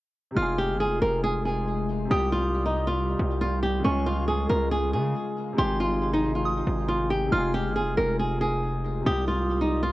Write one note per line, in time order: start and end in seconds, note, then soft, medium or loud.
0.31 2.04 C3 medium
0.31 2.06 G#3 medium
0.37 0.72 F1 loud
0.37 3.81 C3 medium
0.37 2.09 G#3 medium
0.37 0.57 F4 medium
0.37 2.09 F4 medium
0.37 2.08 F4 medium
0.37 1.63 F6 loud
0.42 2.10 G#4 medium
0.59 0.78 G4 medium
0.70 0.87 G1 medium
0.80 1.00 G#4 medium
0.86 1.01 F1 loud
1.02 2.07 F1 loud
1.02 1.22 A#4 medium
1.24 1.44 G#4 medium
1.45 2.07 G#4 medium
2.05 3.78 C3 medium
2.05 3.80 G3 medium
2.11 3.15 C2 loud
2.11 3.83 G3 medium
2.11 5.55 F4 medium
2.11 3.82 F4 medium
2.11 2.31 G4 loud
2.11 3.37 D#6 loud
2.16 3.84 G4 medium
2.32 2.64 F4 medium
2.66 2.85 D#4 medium
2.87 3.38 F4 medium
3.19 3.82 C2 loud
3.41 3.61 F4 medium
3.63 3.83 G4 medium
3.79 5.52 C#3 medium
3.79 5.54 G#3 medium
3.84 4.47 C#2 loud
3.84 5.57 C#3 medium
3.84 5.57 G#3 medium
3.84 4.04 C#4 loud
3.84 5.56 F4 medium
3.84 5.11 C#6 loud
3.90 5.58 G#4 medium
4.06 4.26 F4 medium
4.28 4.48 G#4 medium
4.49 4.95 C#2 loud
4.49 4.69 A#4 loud
4.71 4.91 G#4 medium
4.93 5.14 C#3 loud
4.93 5.54 G#4 medium
5.53 7.25 C3 medium
5.53 7.28 G#3 medium
5.58 6.63 G#1 loud
5.58 7.31 C3 medium
5.58 9.03 G#3 medium
5.58 7.31 D#4 medium
5.58 7.30 D#4 medium
5.58 5.78 G4 medium
5.58 6.41 C6 loud
5.64 7.32 G#4 medium
5.80 6.11 F4 medium
6.13 6.33 D#4 medium
6.35 6.86 F4 medium
6.45 6.86 D#6 medium
6.67 7.30 G#1 loud
6.89 7.09 F4 medium
7.10 7.30 G4 medium
7.27 8.99 C3 medium
7.27 9.02 G#3 medium
7.32 7.67 F1 loud
7.32 9.92 C3 medium
7.32 9.92 F4 medium
7.32 7.52 F4 medium
7.32 9.04 F4 medium
7.32 8.59 F6 loud
7.38 9.06 G#4 medium
7.54 7.74 G4 medium
7.66 7.83 G1 medium
7.76 7.96 G#4 medium
7.82 7.97 F1 loud
7.97 9.02 F1 loud
7.97 8.17 A#4 medium
8.19 8.39 G#4 medium
8.41 9.02 G#4 medium
9.01 9.92 C3 medium
9.01 9.92 G3 medium
9.06 9.92 C2 loud
9.06 9.92 G3 medium
9.06 9.92 F4 medium
9.06 9.26 G4 loud
9.06 9.92 D#6 loud
9.12 9.92 G4 medium
9.28 9.59 F4 medium
9.61 9.81 D#4 medium
9.83 9.92 F4 medium